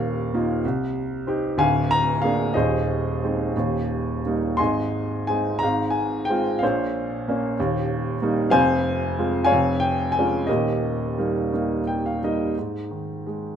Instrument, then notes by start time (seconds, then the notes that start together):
upright piano
Already playing: D#1 D#2 A#4 F5
0.34 A#3 D#4 F4
0.65 C2
1.27 C4 D#4 G4
1.57 D1 D2 F5 G#5
1.91 A#5
2.22 A#3 D4 G#4 F5
2.54 D#1 D#2 G#4 C5 D#5
3.23 G#3 C4 D#4
3.57 D#1 D#2
4.26 G3 A#3 D#4
4.57 G#1 G#2 D#5 G#5 C6
5.27 G#3 C4 D#4 G#5
5.59 G#2 A#5
5.63 G#1 F5
5.90 G#5
6.25 G5
6.29 G#3 C4 F4
6.59 F5
6.63 A#1 A#2 C5 C#5
7.28 A#3 C#4
7.59 D#1 D#2
8.22 G3 A#3 D#4
8.50 F1 F2 C5 F5 G#5
9.18 G#3 C4 F4
9.45 C#5 F5 G#5
9.52 F1 F2
9.80 G5
10.12 G#5
10.18 G#3 C#4 F4
10.47 D#1 G4 A#4 D#5
10.51 D#2
11.18 G3 A#3 D#4
11.53 G3 A#3 D#4
11.87 G5
12.06 F5
12.23 G3 A#3 D#4 D#5
12.58 G#2
12.91 D#3
13.27 G#3